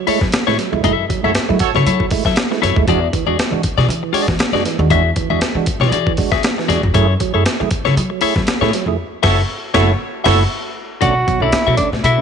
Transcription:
0.07 G#3 A3 E4 A4 C#5, muted upright bass stroke, open hi-hat
0.21 F#3, muted clean electric guitar stroke, kick, snare
0.32 muted clean electric guitar stroke, muted upright bass stroke, snare, closed hi-hat
0.47 A2 G#3 A3 E4 A4 C#5, snare
0.58 F#3, snare, closed hi-hat
0.72 F2 G#3 A3 E4, muted clean electric guitar stroke
0.83 F#2 G#3 A3 E4 A4 E5, kick, closed hi-hat
1.09 F#3, muted clean electric guitar stroke, kick, closed hi-hat
1.23 F#2 G#3 A3 E4 F#4 A4 C#5 E5
1.34 muted clean electric guitar stroke, muted upright bass stroke, snare, closed hi-hat
1.49 F#3 G#3 A3 E4, muted clean electric guitar stroke
1.59 F#4 A4 C#5, kick, closed hi-hat
1.74 C#3 F#3 E4 A4 C#5, snare
1.86 F#3 A3 E4 A4 C#5, closed hi-hat
2.00 F#3, kick
2.11 G#3 A3 E4, muted clean electric guitar stroke, muted upright bass stroke, kick, open hi-hat
2.25 F#3 E4 A4 E5, kick, snare
2.36 muted clean electric guitar stroke, snare, closed hi-hat
2.51 G#3 A3 E4, muted clean electric guitar stroke, snare
2.62 F#2 F#3 E4 A4 C#5, snare, closed hi-hat
2.76 D#2 G#3 A3 E4, muted clean electric guitar stroke, kick
2.88 E2 G#3 D4 F#4 G#4 D5, kick, closed hi-hat
3.13 E3, muted clean electric guitar stroke, kick, closed hi-hat
3.26 E2 G#3 D4 F#4 G#4 D5
3.37 muted upright bass stroke, muted clean electric guitar stroke, snare, closed hi-hat
3.51 E3 G#3 D4 F#4, muted clean electric guitar stroke
3.63 kick, closed hi-hat
3.77 B2 E3 F#4 G#4 D5, snare
3.88 E3 D4 F#4, muted clean electric guitar stroke, closed hi-hat
4.03 E3, muted clean electric guitar stroke
4.13 G#3 D4 F#4 G#4 D5, muted upright bass stroke, open hi-hat
4.28 E3, muted clean electric guitar stroke, kick, snare
4.39 muted upright bass stroke, muted clean electric guitar stroke, snare, closed hi-hat
4.52 F#2 G#3 D4 F#4 G#4 D5, snare
4.64 E3, muted clean electric guitar stroke, snare, closed hi-hat
4.79 D#2 G#3 D4 F#4, muted clean electric guitar stroke
4.90 E2 G#3 D4 F#4 G#4 E5, kick, closed hi-hat
5.16 E3, muted clean electric guitar stroke, kick, closed hi-hat
5.30 E2 G#3 D4 F#4 G#4 E5
5.40 muted upright bass stroke, muted clean electric guitar stroke, snare, closed hi-hat
5.55 E3 G#3 D4 F#4, muted clean electric guitar stroke
5.66 kick, closed hi-hat
5.80 B2 E3 F#4 G#4 D5, snare
5.91 E3 D4 F#4 G#4 D5, closed hi-hat
6.07 E3, kick
6.17 G#3 D4 F#4, muted clean electric guitar stroke, muted upright bass stroke, kick, open hi-hat
6.32 E3 F#4 G#4 E5, kick, snare
6.43 D4 F#4, snare, closed hi-hat
6.58 E3, muted clean electric guitar stroke, snare
6.68 E2 G#3 D4 F#4 G#4 D5, snare, closed hi-hat
6.83 F2, muted clean electric guitar stroke, kick
6.94 F#2 A3 E4 G#4 A4 C#5, kick, closed hi-hat
7.20 F#3, muted clean electric guitar stroke, kick, closed hi-hat
7.34 F#2 A3 E4 G#4 A4 C#5
7.45 muted clean electric guitar stroke, muted upright bass stroke, snare, closed hi-hat
7.60 F#3 A3 E4 G#4, muted clean electric guitar stroke
7.71 kick, closed hi-hat
7.85 C#3 F#3 E4 A4 C#5, snare
7.96 F#3 E4 G#4, muted clean electric guitar stroke, closed hi-hat
8.10 F#3, muted clean electric guitar stroke
8.21 A3 E4 G#4 A4 C#5, muted upright bass stroke, open hi-hat
8.36 F#3, muted clean electric guitar stroke, kick, snare
8.47 muted upright bass stroke, muted clean electric guitar stroke, snare, closed hi-hat
8.61 A2 A3 E4 G#4 A4 C#5, snare
8.73 F#3, snare, closed hi-hat
8.86 F2 A3 E4 G#4, muted clean electric guitar stroke
9.22 F#1 E4 F#4 A4 C#5 E5, kick, snare, crash
9.73 F#1 A3 E4 F#4 A4 C#5, kick, snare
10.24 F#1 A3 E4 F#4 A4 C#5 E5, kick, snare, crash
11.01 B1 A3 C#4 D4 F#4 A4 D5, kick, closed hi-hat
11.16 muted clean electric guitar stroke
11.27 B2 F#3, muted clean electric guitar stroke, kick, closed hi-hat
11.40 B1 A3 C#4 D4 E4 F#4 A4 D5
11.52 C#4 D4, muted upright bass stroke, muted clean electric guitar stroke, snare, closed hi-hat
11.67 B2 F#3 F#4 A4 E5
11.77 A3 C#4 D4, kick, closed hi-hat
11.92 A2, muted clean electric guitar stroke, snare
12.04 B2 E4 F#4 A4 E5, closed hi-hat
12.18 A3 C#4 D4

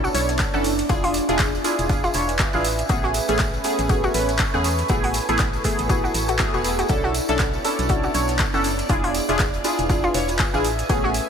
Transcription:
Already playing: B3 C#4 D4 E4 A4 C#5 D5 A5
0.04 F#4, tambourine
0.14 B1 C#4 D4 E4 C#5, closed hi-hat, open hi-hat, tambourine
0.29 snare, closed hi-hat, tambourine
0.39 A4, kick, snare, clap, closed hi-hat, tambourine
0.54 F#1 C#4 D4 E4 A4 F#5, tambourine
0.64 open hi-hat, tambourine
0.79 closed hi-hat, tambourine
0.89 E1 D4 E4 F4 G#4 G#5, kick, closed hi-hat, tambourine
1.04 F4, open hi-hat
1.14 snare, closed hi-hat, open hi-hat, tambourine
1.29 E1 D4 E4 F4 G#4 E5, closed hi-hat, tambourine
1.39 kick, snare, clap, closed hi-hat, tambourine
1.51 B4, closed hi-hat, tambourine
1.64 D4 E4 F4 G#4, closed hi-hat, open hi-hat, tambourine
1.69 G#5
1.79 E1, closed hi-hat, tambourine
1.89 D4 E4 F4 G#4, kick, closed hi-hat, tambourine
2.04 F4, tambourine
2.14 E1 D4 E4 F4 C#5, closed hi-hat, open hi-hat, tambourine
2.29 closed hi-hat, tambourine
2.39 G#4, kick, snare, clap, closed hi-hat, tambourine
2.53 A1 D4 E4 F4 G#4 F5, tambourine
2.64 C#4 A4 B4, closed hi-hat, open hi-hat, tambourine
2.78 closed hi-hat, tambourine
2.89 A1 A3 B3 C#4 F#4 G#4, kick, closed hi-hat, tambourine
3.04 F#4, snare
3.14 closed hi-hat, open hi-hat, tambourine
3.28 A1 A3 B3 C#4 G#4, closed hi-hat, tambourine
3.39 kick, snare, clap, closed hi-hat, tambourine
3.54 tambourine
3.64 A3 B3 C#4 G#4 B5 C#6, closed hi-hat, open hi-hat, tambourine
3.79 A1, closed hi-hat, tambourine
3.89 A3 B3 C#4 F#4 G#4, kick, closed hi-hat, tambourine
4.04 F#4, tambourine
4.14 A1 A3 B3 C#4 B4, closed hi-hat, open hi-hat, tambourine
4.29 snare, closed hi-hat, tambourine
4.39 A4, kick, snare, clap, closed hi-hat, tambourine
4.54 E2 A3 B3 C#4 G#4 F#5, tambourine
4.64 open hi-hat, tambourine
4.79 closed hi-hat, tambourine
4.88 A1 A3 B3 E4 F#4 G#4 A4, kick, closed hi-hat, tambourine
5.04 F#4, open hi-hat
5.09 C#5
5.14 snare, closed hi-hat, open hi-hat, tambourine
5.29 A1 A3 B3 E4 G#4, closed hi-hat, tambourine
5.39 kick, snare, clap, closed hi-hat, tambourine
5.53 closed hi-hat, tambourine
5.64 A3 B3 E4 G#4, kick, closed hi-hat, open hi-hat, tambourine
5.79 A1 A4, closed hi-hat, tambourine
5.89 A3 B3 E4 F#4 G#4, kick, closed hi-hat, tambourine
6.04 F#4, tambourine
6.14 A1, closed hi-hat, open hi-hat, tambourine
6.28 F#4, closed hi-hat, tambourine
6.39 A3 B3 E4 F#4 G#4, kick, snare, clap, closed hi-hat, tambourine
6.54 E1 A3 B3 E4 F#4 G#4, tambourine
6.64 A3 B3 E4 G#4, closed hi-hat, open hi-hat, tambourine
6.79 F#4, closed hi-hat, tambourine
6.88 B1 B3 C#4 D4 E4 F#4 A4 C#5 D5 A5, kick, closed hi-hat, tambourine
7.03 F#4, snare
7.14 closed hi-hat, open hi-hat, tambourine
7.28 B1 C#4 D4 E4 A4, closed hi-hat, tambourine
7.39 kick, snare, clap, closed hi-hat, tambourine
7.44 D4
7.53 tambourine
7.64 C#4 D4 E4 A4, closed hi-hat, open hi-hat, tambourine
7.79 B1, closed hi-hat, tambourine
7.89 C#4 D4 E4 F#4 A4, kick, closed hi-hat, tambourine
8.04 F#4, tambourine
8.14 B1 C#4 D4 E4 C#5, closed hi-hat, open hi-hat, tambourine
8.28 snare, closed hi-hat, tambourine
8.39 A4, kick, snare, clap, closed hi-hat, tambourine
8.54 F#1 C#4 D4 E4 A4 F#5, tambourine
8.64 open hi-hat, tambourine
8.79 closed hi-hat, tambourine
8.89 E1 D4 E4 F4 G#4 G#5, kick, closed hi-hat, tambourine
9.04 F4, open hi-hat
9.14 snare, closed hi-hat, open hi-hat, tambourine
9.29 E1 D4 E4 F4 G#4, closed hi-hat, tambourine
9.33 B4
9.39 kick, snare, clap, closed hi-hat, tambourine
9.52 E5, closed hi-hat, tambourine
9.64 D4 E4 F4 G#4, closed hi-hat, open hi-hat, tambourine
9.69 G#5
9.79 E1, closed hi-hat, tambourine
9.89 D4 E4 F4 G#4, kick, closed hi-hat, tambourine
10.04 F4, tambourine
10.14 E1 D4 E4 F4 C#5, closed hi-hat, open hi-hat, tambourine
10.28 closed hi-hat, tambourine
10.39 G#4, kick, snare, clap, closed hi-hat, tambourine
10.54 A1 D4 E4 F4 G#4 F5, tambourine
10.64 C#4 A4 B4, closed hi-hat, open hi-hat, tambourine
10.79 closed hi-hat, tambourine
10.89 A1 A3 B3 C#4 F#4 G#4, kick, closed hi-hat, tambourine
11.04 F#4, snare
11.14 closed hi-hat, open hi-hat, tambourine

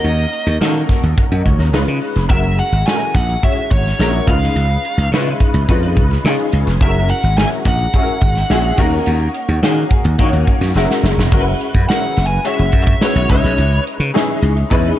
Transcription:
Already playing: A#3 C#4 D#4 F#4 A#4 D#5
0.04 D#2, closed hi-hat
0.18 closed hi-hat
0.33 closed hi-hat
0.47 D#2, closed hi-hat
0.60 D#3 A#3 C#4 D#4 F#4 A4, snare
0.68 A#4
0.75 closed hi-hat
0.89 kick, snare, closed hi-hat
1.03 D#2, closed hi-hat
1.17 A#4 F#5, kick, closed hi-hat
1.31 F#2 F#4 D#5, closed hi-hat
1.45 C#2 C#5, kick, closed hi-hat
1.59 D#2 C#4 A#4, snare, closed hi-hat
1.73 C#2 G#3 C#4 D#4 F4 B4, snare
1.88 C#3, closed hi-hat
2.02 open hi-hat
2.16 F1, snare, closed hi-hat
2.28 F#1 G#3 C#4 E4 F#4 A#4 E5, kick, closed hi-hat
2.44 closed hi-hat
2.58 F#5, closed hi-hat
2.72 G#1, closed hi-hat
2.86 G#3 C#4 E4 F#4 A4 G#5, snare
2.93 A#4
3.00 closed hi-hat
3.15 A#1 F#5, kick, snare, closed hi-hat
3.29 closed hi-hat
3.43 G#3 C#4 E4 F#4 C#5 E5, kick, closed hi-hat
3.57 closed hi-hat
3.71 G#1 C#5, kick, closed hi-hat
3.86 snare, closed hi-hat
3.99 A#1 G#3 C#4 E4 F#4 A#4, snare
4.14 closed hi-hat
4.27 C#2 G#3 C#4 D#4 F4 B4 F5, kick, closed hi-hat
4.42 snare, closed hi-hat
4.55 C#2, closed hi-hat
4.70 closed hi-hat
4.85 closed hi-hat
4.98 C#2, closed hi-hat
5.12 C#3 G#3 C#4 D#4 E4 B4, snare
5.20 F4
5.27 closed hi-hat
5.40 kick, closed hi-hat
5.54 C#2, closed hi-hat
5.69 F2 G#3 C#4 D#4 F4 B4, kick, closed hi-hat
5.83 closed hi-hat
5.97 C#2, kick, closed hi-hat
6.11 snare, closed hi-hat
6.24 C#3 G#3 C#4 D#4 F4 G#4, snare
6.39 closed hi-hat
6.52 C#2, closed hi-hat
6.67 F1, snare, closed hi-hat
6.81 F#1 G#3 C#4 E4 F#4 A#4 E5, kick, closed hi-hat
6.94 closed hi-hat
7.09 F#5, closed hi-hat
7.23 G#1, closed hi-hat
7.38 G#3 C#4 E4 F#4 A#4 G#5, snare
7.51 closed hi-hat
7.65 A#1 F#5, kick, snare, closed hi-hat
7.79 closed hi-hat
7.93 G#3 C#4 E4 F#4 G#4, kick, closed hi-hat
8.02 A#4
8.07 closed hi-hat
8.21 G#1, kick, closed hi-hat
8.35 snare, closed hi-hat
8.50 A#1 G#3 C#4 E4 F#4 G#4, snare
8.63 closed hi-hat
8.77 D#2 A#3 C#4 D#4 F#4 A#4, kick, closed hi-hat
8.91 closed hi-hat
9.06 D#2, closed hi-hat
9.19 closed hi-hat
9.35 closed hi-hat
9.48 D#2, closed hi-hat
9.62 D#3 A#3 C#4 D#4 F#4 G#4, snare
9.76 closed hi-hat
9.91 kick, closed hi-hat
10.04 D#2, closed hi-hat
10.18 D#3 A#3 C#4 D#4 F#4 C#5, kick, closed hi-hat
10.33 D#2, closed hi-hat
10.47 kick, closed hi-hat
10.61 F#2, snare, closed hi-hat
10.75 F#1 G#3 C#4 E4 F#4 A#4, snare
10.91 snare
11.03 F#1, snare
11.18 E1, snare
11.32 F#1 G#3 C#4 E4 F#4 A#4, kick, crash
11.40 B4
11.61 closed hi-hat
11.75 F#2, kick, closed hi-hat
11.88 G#3 C#4 E4 F#4 A#4 F#5, snare
12.02 closed hi-hat
12.17 F#1, snare, closed hi-hat
12.27 G#5, closed hi-hat
12.44 G#3 C#4 E4 F#4 C#5 E5, closed hi-hat
12.58 F#1, closed hi-hat
12.72 F#2, kick, closed hi-hat
12.84 E5, kick, closed hi-hat
13.01 G#3 C#4 E4 F#4 B4 C#5, snare
13.15 B1, closed hi-hat
13.29 C#2 G#3 C#4 D#4 E4 B4 C#5, kick, open hi-hat
13.44 B1, closed hi-hat
13.58 C#2, closed hi-hat
13.87 closed hi-hat
14.00 C#3, closed hi-hat
14.14 G#3 C#4 D#4 E4 G#4, snare
14.29 closed hi-hat
14.42 C#2, closed hi-hat
14.57 closed hi-hat
14.70 E2 G#3 C#4 D#4 E4 B4, kick, closed hi-hat
14.85 closed hi-hat

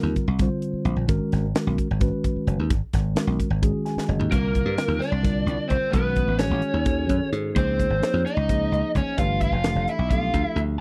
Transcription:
Already playing: D3 G3 C4 F4 A#4
0.03 D#2
0.16 kick, closed hi-hat
0.28 C2
0.39 D3 G3 C4 F4 C5, kick, closed hi-hat
0.62 closed hi-hat
0.73 muted slap bass stroke
0.85 A#1, closed hi-hat
0.96 A#1
1.07 G#1 D#3 G#3 C#4 F#4 A#4, kick, closed hi-hat
1.32 G#1, snare, closed hi-hat
1.54 D#3 G#3 C#4 F#4 A#4, snare, closed hi-hat
1.67 B1
1.78 kick, closed hi-hat
1.91 G#1
1.99 D#3 G#3 C#4 F#4 B4, kick, closed hi-hat
2.24 kick, closed hi-hat
2.36 muted slap bass stroke
2.47 F#1, closed hi-hat
2.59 D#2
2.70 G#1, kick, closed hi-hat
2.93 G#1, kick, snare, closed hi-hat
3.15 D#3 G#3 C#4 F#4 A#4, snare, closed hi-hat
3.27 B1
3.40 kick, closed hi-hat
3.50 G#1
3.62 D#3 G#3 C#4 F#4 G#4, kick, closed hi-hat
3.86 G#5, snare, closed hi-hat
3.97 muted slap bass stroke, snare
4.08 F#1 D#5, mid tom
4.19 D#2, floor tom
4.30 C2 D3 G3 A#3 C4 F4 A#4, kick, closed hi-hat
4.55 kick, closed hi-hat
4.66 G2
4.77 D3 G3 C4 F4 A#4, snare, closed hi-hat
4.88 D#2
4.99 D4 D5, snare, closed hi-hat
5.12 C2
5.21 D3 G3 C4 F4 A#4, kick, snare, closed hi-hat
5.46 C2, closed hi-hat
5.68 C2 C4 C5, kick, closed hi-hat
5.81 muted slap bass stroke
5.91 B1 D#3 G#3 B3 C#4 F#4 B4, kick, closed hi-hat
6.16 kick, closed hi-hat
6.28 A1
6.38 D#3 G#3 C#4 F#4 G#4 C#5, snare, closed hi-hat
6.51 A1
6.62 closed hi-hat
6.74 D#2
6.84 D#3 C#4 F#4 G#4 A4, kick, closed hi-hat
7.09 F#2, kick, closed hi-hat
7.32 G#2, closed hi-hat
7.54 C#2 F3 A#3 D#4 G#4 C5, kick, closed hi-hat
7.58 C4
7.79 kick, closed hi-hat
7.90 G#1
8.00 F3 A#3 D#4 G#4 C#5, snare, closed hi-hat
8.14 F2
8.26 D#4 D#5, closed hi-hat
8.37 C#2
8.47 F3 A#3 D#4 G#4 C5, kick, closed hi-hat
8.72 C#2, closed hi-hat
8.95 C#2 C#4 C#5, kick, closed hi-hat
9.06 muted slap bass stroke
9.17 G1 E3 A3 D4 F4 G4 B4 F5, kick, closed hi-hat
9.41 F4 F5, kick, closed hi-hat
9.52 F1
9.63 E3 A3 D4 G4 A4, snare, closed hi-hat
9.75 F1
9.88 E4 E5, closed hi-hat
9.99 B1
10.10 F3 A3 D4 F4 G4 A4 F5, kick, closed hi-hat
10.34 D2, kick, closed hi-hat
10.45 E4 E5
10.56 D2, closed hi-hat

